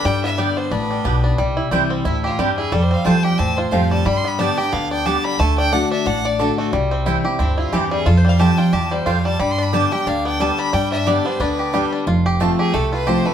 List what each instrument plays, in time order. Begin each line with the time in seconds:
Already playing: five-string banjo B3 G4
0.04 steel-string acoustic guitar G2, upright bass G2, five-string banjo G3, resonator guitar played with a steel bar G4, fiddle G5
0.23 five-string banjo B3, resonator guitar played with a steel bar E4, fiddle E5
0.37 steel-string acoustic guitar D3 G3 B3 G4, five-string banjo G3, mandolin B3 G4 D5 G5, resonator guitar played with a steel bar D4, fiddle D5
0.56 five-string banjo B3, resonator guitar played with a steel bar C4, fiddle C5
0.71 upright bass A1, steel-string acoustic guitar A2, resonator guitar played with a steel bar B3, five-string banjo D4, fiddle B4
0.91 five-string banjo G3
1.04 upright bass B1, steel-string acoustic guitar B2, mandolin B3 G4 D5 G5, five-string banjo B3
1.24 five-string banjo D4
1.38 upright bass C2, steel-string acoustic guitar C3, five-string banjo G3
1.57 five-string banjo E4
1.71 upright bass C2, steel-string acoustic guitar E3 G3 C4 E4, five-string banjo G3, mandolin C4 E4 C5 G5
1.90 five-string banjo C4
2.05 upright bass D2, steel-string acoustic guitar A2, fiddle E4, five-string banjo E4
2.24 fiddle F4, five-string banjo G4
2.38 upright bass E2, steel-string acoustic guitar G2, five-string banjo G3, mandolin C4 E4 C5 G5, fiddle G4
2.57 five-string banjo E4, fiddle G#4
2.72 upright bass F2, steel-string acoustic guitar F2, five-string banjo G3, fiddle A4
2.83 fiddle C5
2.91 five-string banjo C4, fiddle F5
3.05 upright bass D2, steel-string acoustic guitar F3 G3 C4 F4, mandolin A3 F4 C5 G5, five-string banjo F4, fiddle A5
3.24 five-string banjo G4, fiddle G5
3.38 upright bass E2, steel-string acoustic guitar A2, five-string banjo C4, fiddle A5
3.57 five-string banjo F4, fiddle C5
3.71 upright bass F2, steel-string acoustic guitar F3 G3 C4 F4, five-string banjo F3, mandolin A3 F4 C5 G5, fiddle F5
3.91 five-string banjo G3, fiddle A5
4.06 upright bass G2, steel-string acoustic guitar G2, five-string banjo G3, fiddle B5
4.17 fiddle C6
4.24 five-string banjo B3, fiddle B5
4.39 steel-string acoustic guitar D3 G3 B3 G4, mandolin B3 G4 D5 G5, five-string banjo D4, fiddle A5
4.57 steel-string acoustic guitar B3 G4, five-string banjo G4, fiddle G5
4.72 upright bass D2, steel-string acoustic guitar D3, five-string banjo B3, fiddle F5
4.91 five-string banjo D4, fiddle G5
5.05 steel-string acoustic guitar D3 G3 B3 G4, five-string banjo D3, mandolin B3 G4 D5 G5, fiddle A5
5.24 five-string banjo G3, fiddle B5
5.39 upright bass D2, steel-string acoustic guitar D3, five-string banjo A3, fiddle A5
5.58 five-string banjo D4, fiddle G5
5.72 steel-string acoustic guitar D3 A3 D4 F#4, mandolin A3 F#4 D5 A5, five-string banjo D4, fiddle F#5
5.91 five-string banjo D4, fiddle E5
6.06 upright bass A1, steel-string acoustic guitar A2, five-string banjo D4, resonator guitar played with a steel bar F#5, fiddle F#5
6.24 five-string banjo D4, resonator guitar played with a steel bar D5, fiddle D5
6.39 steel-string acoustic guitar D3 A3 D4 F#4, five-string banjo D3, mandolin A3 F#4 D5 A5, resonator guitar played with a steel bar A4, fiddle A4
6.57 five-string banjo A3, resonator guitar played with a steel bar F#4, fiddle F#4
6.73 upright bass C2, steel-string acoustic guitar C3, five-string banjo G3
6.91 five-string banjo C4
7.06 steel-string acoustic guitar E3 G3 C4 E4, mandolin C4 E4 C5 G5, five-string banjo E4
7.24 steel-string acoustic guitar C4 E4, five-string banjo G4
7.39 upright bass D2, steel-string acoustic guitar G2, five-string banjo C4, resonator guitar played with a steel bar E4, fiddle E4
7.58 five-string banjo E4, resonator guitar played with a steel bar F4, fiddle F4
7.73 upright bass E2, five-string banjo E3, steel-string acoustic guitar E3 G3 C4 E4, mandolin C4 E4 C5 G5, resonator guitar played with a steel bar G4, fiddle G4
7.91 five-string banjo G3, resonator guitar played with a steel bar G#4, fiddle G#4
8.06 upright bass F2, steel-string acoustic guitar F2, five-string banjo F4, resonator guitar played with a steel bar A4, fiddle A4
8.17 resonator guitar played with a steel bar C5, fiddle C5
8.25 five-string banjo G3, fiddle F5
8.29 resonator guitar played with a steel bar F5
8.39 steel-string acoustic guitar F3 G3 C4 F4, mandolin A3 F4 C5 G5, five-string banjo G4, fiddle A5, resonator guitar played with a steel bar A5
8.58 five-string banjo F4, fiddle G5, resonator guitar played with a steel bar G5
8.73 upright bass E2, steel-string acoustic guitar E2, five-string banjo G4, fiddle A5, resonator guitar played with a steel bar A5
8.91 five-string banjo G3, fiddle C5, resonator guitar played with a steel bar C5
9.06 upright bass F2, steel-string acoustic guitar F2, mandolin A3 F4 C5 G5, five-string banjo F4, fiddle F5, resonator guitar played with a steel bar F5
9.25 five-string banjo G3, fiddle A5, resonator guitar played with a steel bar A5
9.39 steel-string acoustic guitar G2, upright bass G2, five-string banjo G3, resonator guitar played with a steel bar B5, fiddle B5
9.51 fiddle C6, resonator guitar played with a steel bar C6
9.58 five-string banjo D4, resonator guitar played with a steel bar B5
9.63 fiddle B5
9.73 steel-string acoustic guitar D3 G3 B3 G4, five-string banjo G3, mandolin B3 G4 D5 G5, resonator guitar played with a steel bar A5, fiddle A5
9.91 steel-string acoustic guitar B3 G4, five-string banjo G4, resonator guitar played with a steel bar G5, fiddle G5
10.06 upright bass D2, steel-string acoustic guitar D3, five-string banjo D4, resonator guitar played with a steel bar F5, fiddle F5
10.25 five-string banjo B3, resonator guitar played with a steel bar G5, fiddle G5
10.39 steel-string acoustic guitar D3 G3 B3 G4, five-string banjo G3, mandolin B3 G4 D5 G5, resonator guitar played with a steel bar A5, fiddle A5
10.58 five-string banjo D4, resonator guitar played with a steel bar B5, fiddle B5
10.73 upright bass G2, steel-string acoustic guitar G2, five-string banjo G3, resonator guitar played with a steel bar G5, fiddle G5
10.92 five-string banjo D4, resonator guitar played with a steel bar E5, fiddle E5
11.06 steel-string acoustic guitar D3 G3 B3 G4, five-string banjo G3, mandolin B3 G4 D5 G5, resonator guitar played with a steel bar D5, fiddle D5
11.25 five-string banjo B3, steel-string acoustic guitar B3 G4, resonator guitar played with a steel bar C5, fiddle C5
11.40 upright bass D2, steel-string acoustic guitar D3, five-string banjo D4, resonator guitar played with a steel bar B4, fiddle B4
11.59 five-string banjo G4
11.73 steel-string acoustic guitar D3 G3 B3 G4, five-string banjo G3, mandolin B3 G4 D5 G5
11.93 five-string banjo D4
12.07 upright bass F1, steel-string acoustic guitar F2, five-string banjo F4
12.26 five-string banjo G4
12.40 steel-string acoustic guitar F3 A3 C4 F4, five-string banjo A3, mandolin C4 F4 C5 A5
12.59 five-string banjo G4, fiddle G#4
12.74 upright bass C2, steel-string acoustic guitar C3, five-string banjo A3, fiddle A4
12.93 five-string banjo F4, fiddle B4
13.06 steel-string acoustic guitar F3 A3 C4 F4, mandolin C4 F4 C5 A5, five-string banjo G4, fiddle C5
13.25 five-string banjo A3, steel-string acoustic guitar C4 F4, fiddle B4